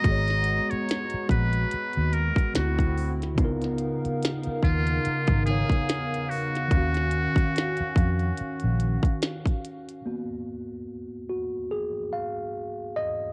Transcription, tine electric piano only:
X:1
M:4/4
L:1/8
Q:"Swing 16ths" 1/4=72
K:G#dor
V:1 name="Tine electric piano"
[G,FGc]6 [=D,=C=EF]2 | [C,B,DEA]4- [C,B,DEA] [C,B,Dce]3 | [D,CFe]8 | z3 F G e2 d |]
V:2 name="Tine electric piano"
z8 | z8 | z8 | [A,B,F]8 |]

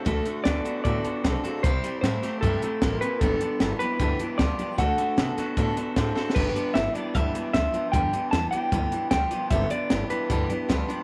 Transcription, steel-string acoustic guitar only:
X:1
M:4/4
L:1/8
Q:1/4=152
K:G
V:1 name="Steel-string acoustic guitar"
[D,A,DFA] [DFA] [A,DFA] [DFA] [D,A,DFA] [DFA] [A,DFA] [DFA] | [C,G,CEG] [CEG] [G,CEG] [CEG] [C,G,CEG] [CEG] [G,CEG] [CEG] | [G,,D,G,B,DG] [G,B,DG] [G,B,DG] [G,B,DG] [G,,D,G,B,DG] [G,B,DG] [G,B,DG] [G,B,DG] | [D,A,DFA] [DFA] [A,DFA] [DFA] [D,A,DFA] [DFA] [A,DFA] [DFA] |
[G,,D,G,B,DG] [G,B,DG] [G,B,DG] [G,B,DG] [G,,D,G,B,DG] [G,B,DG] [G,B,DG] [G,B,DG] | [G,,D,G,B,DG] [G,B,DG] [G,B,DG] [G,B,DG] [G,,D,G,B,DG] [G,B,DG] [G,B,DG] [G,B,DG] | [G,,D,G,B,DG] [G,B,DG] [G,B,DG] [G,B,DG] [G,,D,G,B,DG] [G,B,DG] [G,B,DG] [G,B,DG] |]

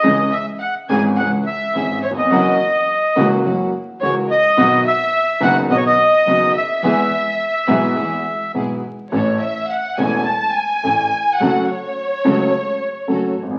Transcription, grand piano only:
X:1
M:4/4
L:1/16
Q:1/4=106
K:E
V:1 name="Grand piano" clef=bass
[C,,C,E,G,CG]2 z4 [G,,,G,,E,G,CG]2 [C,,C,E,G,CG]2 z2 [G,,,G,,E,G,CG]2 z/2 D,,/2 E,,/2 =F,,/2 | [F,,E,F,^A,CF]2 z4 [C,,C,E,A,CF]2 [F,,E,F,A,CF]2 z2 [C,,C,E,A,CF]2 z2 | [B,,,B,,D,F,B,F]2 z4 [F,,,F,,D,F,B,F]2 [B,,,B,,D,F,B,F]2 z2 [F,,,F,,D,F,B,F]2 z2 | [E,,E,G,B,G]2 z4 [B,,,B,,E,G,B,G]2 [E,,E,G,B,G]2 z2 [B,,,B,,E,G,B,G]2 z2 |
[K:A] [A,,,A,,E,A,CA]2 z4 [E,,,E,,E,A,CA]2 z4 [A,,,A,,E,A,CA]2 z2 | [F,,F,A,CA]2 z4 [C,,C,F,A,CA]2 z4 [F,,F,A,CA]2 z/2 G,,,/2 A,,,/2 z/2 |]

